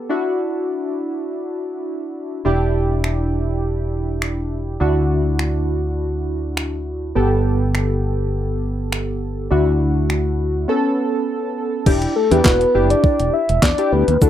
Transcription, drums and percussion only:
3.04 finger snap
4.22 finger snap
5.39 finger snap
6.57 finger snap
7.75 finger snap
8.92 finger snap
10.10 finger snap
11.86 kick, crash
12.02 closed hi-hat
12.31 closed hi-hat
12.44 kick, snare, clap
12.61 closed hi-hat
12.90 closed hi-hat
13.04 kick
13.20 closed hi-hat
13.49 closed hi-hat
13.62 kick, snare, clap
13.78 closed hi-hat
14.08 closed hi-hat
14.22 kick, shaker

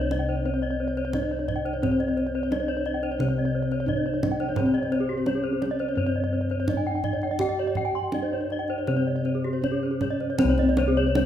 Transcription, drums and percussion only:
0.11 kendang slap, kendang high
0.97 kendang slap
1.13 kendang high, kendang low
1.48 kendang slap, kendang low
1.66 kendang slap
1.83 kendang low
2.00 kendang slap
2.17 kendang slap
2.52 kendang high
2.86 kendang slap
3.03 kendang slap
3.20 kendang high
3.71 kendang slap
3.88 kendang low
4.23 kendang slap, kendang high, kendang low
4.40 kendang slap
4.56 kendang high, kendang low
4.75 kendang slap
4.92 kendang slap
5.26 kendang high
5.62 kendang slap, kendang high
5.79 kendang slap
6.50 kendang slap
6.68 kendang high, kendang low
7.04 kendang slap, kendang low
7.22 kendang slap
7.39 kendang low
7.75 kendang slap, kendang low
8.12 kendang slap, kendang high
8.50 kendang slap
8.68 kendang slap
8.87 kendang high
9.25 kendang slap
9.44 kendang slap
9.64 kendang slap, kendang low
10.01 kendang slap, kendang high, kendang low
10.20 kendang slap
10.38 kendang high, kendang low
10.58 kendang slap
10.77 kendang high
11.15 kendang slap, kendang high

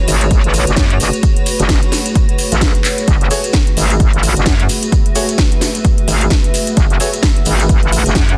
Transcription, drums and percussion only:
0.08 open hi-hat, maracas
0.21 closed hi-hat, maracas
0.31 kick, closed hi-hat, maracas
0.44 closed hi-hat
0.54 open hi-hat, maracas
0.67 closed hi-hat, maracas
0.76 kick, snare, closed hi-hat, maracas
0.90 closed hi-hat
1.00 open hi-hat, maracas
1.13 closed hi-hat, maracas
1.23 kick, closed hi-hat, maracas
1.37 closed hi-hat
1.46 open hi-hat, maracas
1.59 closed hi-hat, maracas
1.69 kick, snare, closed hi-hat, maracas
1.83 closed hi-hat
1.92 snare, open hi-hat, maracas
2.06 closed hi-hat, maracas
2.15 kick, closed hi-hat, maracas
2.29 closed hi-hat
2.38 open hi-hat, maracas
2.52 closed hi-hat, maracas
2.61 kick, snare, closed hi-hat, maracas
2.75 closed hi-hat
2.85 clap, open hi-hat, maracas
2.98 closed hi-hat, maracas
3.08 kick, closed hi-hat, maracas
3.21 closed hi-hat
3.31 open hi-hat, maracas
3.44 closed hi-hat, maracas
3.53 kick, snare, closed hi-hat, maracas
3.67 closed hi-hat
3.77 open hi-hat, maracas
3.90 closed hi-hat, maracas
4.00 kick, closed hi-hat, maracas
4.13 closed hi-hat
4.23 open hi-hat, maracas
4.37 closed hi-hat, maracas
4.46 kick, snare, closed hi-hat, maracas
4.60 closed hi-hat
4.69 open hi-hat, maracas
4.83 closed hi-hat, maracas
4.92 kick, closed hi-hat, maracas
5.06 closed hi-hat
5.15 open hi-hat, maracas
5.28 closed hi-hat, maracas
5.38 kick, snare, closed hi-hat, maracas
5.52 closed hi-hat
5.61 snare, open hi-hat, maracas
5.75 closed hi-hat, maracas
5.85 kick, closed hi-hat, maracas
5.98 closed hi-hat
6.08 open hi-hat, maracas
6.21 closed hi-hat, maracas
6.30 kick, snare, closed hi-hat, maracas
6.44 closed hi-hat
6.54 open hi-hat, maracas
6.67 closed hi-hat, maracas
6.77 kick, closed hi-hat, maracas
6.90 closed hi-hat
7.00 open hi-hat, maracas
7.13 closed hi-hat, maracas
7.23 kick, snare, closed hi-hat, maracas
7.37 closed hi-hat
7.46 open hi-hat, maracas
7.60 closed hi-hat, maracas
7.69 kick, closed hi-hat, maracas
7.83 closed hi-hat
7.92 open hi-hat, maracas
8.06 closed hi-hat, maracas
8.15 kick, snare, closed hi-hat
8.29 closed hi-hat

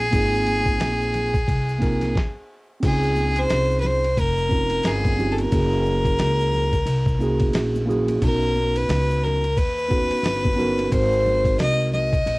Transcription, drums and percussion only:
0.00 ride, maracas
0.13 kick, ride, maracas
0.34 maracas
0.47 ride, high conga, maracas
0.66 kick, maracas
0.80 snare, hi-hat pedal, ride, high conga, maracas
1.02 maracas
1.14 ride, low conga, maracas
1.34 kick, ride, maracas
1.48 kick, ride, maracas
1.69 maracas
1.82 kick, snare, ride, maracas
2.01 snare, ride, high conga, maracas
2.15 kick, snare
2.83 kick, crash, ride, maracas
3.03 maracas
3.16 high conga, maracas
3.36 ride, maracas
3.50 snare, hi-hat pedal, ride, maracas
3.71 maracas
3.84 snare, low conga, maracas
4.04 ride, maracas
4.17 kick, ride, maracas
4.38 maracas
4.51 kick, maracas
4.70 ride, high conga, maracas
4.83 snare, hi-hat pedal, ride, maracas
5.05 kick, high conga, maracas
5.20 low conga, maracas
5.38 ride, high conga, maracas
5.52 kick, ride, maracas
5.72 maracas
5.86 high conga, maracas
6.05 kick, ride, maracas
6.19 snare, hi-hat pedal, ride, maracas
6.40 maracas
6.53 low conga, maracas
6.73 kick, ride, maracas
6.87 ride, maracas
7.06 kick, maracas
7.21 maracas
7.40 kick, ride, high conga, maracas
7.53 snare, hi-hat pedal, ride, maracas
7.75 high conga, maracas
7.90 low conga, maracas
8.08 ride, high conga, maracas
8.22 kick, ride, maracas
8.42 maracas
8.56 high conga, maracas
8.75 ride, maracas
8.89 snare, hi-hat pedal, ride, maracas
9.11 maracas
9.24 snare, low conga, maracas
9.44 ride, maracas
9.57 kick, ride, maracas
9.78 maracas
9.91 kick, maracas
10.11 ride, high conga, maracas
10.24 snare, hi-hat pedal, ride, maracas
10.45 kick, high conga, maracas
10.60 low conga, maracas
10.78 ride, high conga, maracas
10.92 kick, ride, maracas
11.13 maracas
11.26 high conga, low conga, maracas
11.45 kick, ride, maracas
11.59 snare, hi-hat pedal, ride, maracas
11.80 maracas
11.94 low conga, maracas
12.13 kick, ride, maracas
12.26 ride, maracas

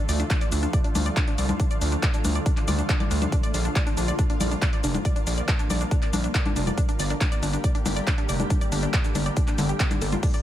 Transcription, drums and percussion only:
0.09 open hi-hat, shaker
0.20 closed hi-hat, shaker
0.30 kick, clap, closed hi-hat, shaker
0.41 closed hi-hat, shaker
0.52 open hi-hat, shaker
0.63 closed hi-hat, shaker
0.73 kick, closed hi-hat, shaker
0.84 closed hi-hat
0.95 open hi-hat, high conga, shaker
1.06 closed hi-hat, shaker
1.16 kick, clap, closed hi-hat, shaker
1.28 closed hi-hat
1.38 open hi-hat, shaker
1.49 closed hi-hat, high conga, shaker
1.60 kick, closed hi-hat, shaker
1.71 closed hi-hat, shaker
1.81 open hi-hat, shaker
1.92 closed hi-hat, shaker
2.03 kick, clap, closed hi-hat, shaker
2.14 closed hi-hat, shaker
2.25 open hi-hat, high conga, shaker
2.35 closed hi-hat, shaker
2.46 kick, closed hi-hat, shaker
2.57 clap, closed hi-hat
2.68 open hi-hat, high conga, shaker
2.79 closed hi-hat, shaker
2.89 kick, clap, closed hi-hat, shaker
3.00 closed hi-hat, high conga
3.11 open hi-hat, shaker
3.22 closed hi-hat, high conga, shaker
3.32 kick, closed hi-hat, shaker
3.43 closed hi-hat, shaker
3.54 open hi-hat, shaker
3.65 closed hi-hat, shaker
3.76 kick, clap, closed hi-hat, shaker
3.87 closed hi-hat, shaker
3.97 open hi-hat, shaker
4.08 closed hi-hat, shaker
4.19 kick, closed hi-hat, shaker
4.30 closed hi-hat
4.41 open hi-hat, high conga, shaker
4.51 closed hi-hat, shaker
4.62 kick, clap, closed hi-hat, shaker
4.73 closed hi-hat
4.84 open hi-hat, shaker
4.94 closed hi-hat, high conga, shaker
5.05 kick, closed hi-hat, shaker
5.16 closed hi-hat, shaker
5.27 open hi-hat, shaker
5.38 closed hi-hat, shaker
5.48 kick, clap, closed hi-hat, shaker
5.59 closed hi-hat, shaker
5.70 open hi-hat, high conga, shaker
5.81 closed hi-hat, shaker
5.91 kick, closed hi-hat, shaker
6.02 clap, closed hi-hat
6.13 open hi-hat, high conga, shaker
6.24 closed hi-hat, shaker
6.34 kick, clap, closed hi-hat, shaker
6.46 closed hi-hat, high conga
6.56 open hi-hat, shaker
6.67 closed hi-hat, high conga, shaker
6.78 kick, closed hi-hat, shaker
6.89 closed hi-hat, shaker
6.99 open hi-hat, shaker
7.10 closed hi-hat, shaker
7.21 kick, clap, closed hi-hat, shaker
7.32 closed hi-hat, shaker
7.43 open hi-hat, shaker
7.53 closed hi-hat, shaker
7.64 kick, closed hi-hat, shaker
7.75 closed hi-hat
7.86 open hi-hat, high conga, shaker
7.97 closed hi-hat, shaker
8.07 kick, clap, closed hi-hat, shaker
8.18 closed hi-hat
8.29 open hi-hat, shaker
8.40 closed hi-hat, high conga, shaker
8.50 kick, closed hi-hat, shaker
8.61 closed hi-hat, shaker
8.72 open hi-hat, shaker
8.83 closed hi-hat, shaker
8.93 kick, clap, closed hi-hat, shaker
9.04 closed hi-hat, shaker
9.15 open hi-hat, high conga, shaker
9.26 closed hi-hat, shaker
9.37 kick, closed hi-hat, shaker
9.48 clap, closed hi-hat, shaker
9.58 open hi-hat, high conga, shaker
9.69 closed hi-hat, shaker
9.80 kick, clap, closed hi-hat, shaker
9.91 closed hi-hat, high conga, shaker
10.01 open hi-hat, shaker
10.12 closed hi-hat, high conga, shaker
10.23 kick, closed hi-hat, crash, ride, shaker
10.34 closed hi-hat, shaker

